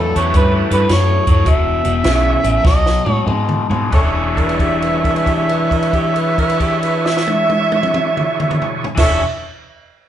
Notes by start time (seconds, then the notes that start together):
Already playing: A2 F#3
0.00 A4
0.15 E2 A2 F#3 C#4 F#4 G4 A4 B4 C#5, closed hi-hat
0.34 G2 A2 E3 B4, kick, closed hi-hat
0.70 G2 A2 E3 B4, closed hi-hat
0.89 F#2 A2 F#3, snare, closed hi-hat
0.93 C#5
1.27 F#2 A2 F#3, kick, closed hi-hat
1.31 C#5
1.46 E1 E2 B2 E5, kick, closed hi-hat
1.84 E1 E2 B2, closed hi-hat
2.03 B1 E2 C#3 D4 E4 F#4 G#4 C#5, snare, closed hi-hat
2.43 A1 E2 C#3, closed hi-hat
2.63 B1 B2 F#3 D#5, kick, snare
2.86 snare
3.05 A2 B2 F#3, high tom
3.12 C#5
3.26 G#2 B2 G#3, mid tom
3.49 mid tom
3.70 G#2 B2 G#3, floor tom
3.91 E1 E3 D4 E4 F#4 G#4 A4 C#5 E5, kick, crash
3.95 C#5
4.37 B4, kick, crash
4.49 crash
4.59 G4, kick, crash
4.82 B4, crash
5.04 B4, kick, crash
5.16 crash
5.26 G4, kick, crash
5.49 B4, crash
5.71 B4, kick, crash
5.83 crash
5.93 G4, kick, crash
6.16 B4, crash
6.38 B4, kick, crash
6.50 crash
6.60 G4, kick, crash
6.83 B4, crash
7.06 E5, snare
7.17 snare
7.27 high tom
7.50 high tom
7.72 high tom
7.83 mid tom
7.94 mid tom
8.17 mid tom
8.40 mid tom
8.51 mid tom
8.62 floor tom
8.84 floor tom
8.95 E1 E3 D4 E4 F#4 G#4 E5, kick, snare, crash
8.99 A4 C#5 E5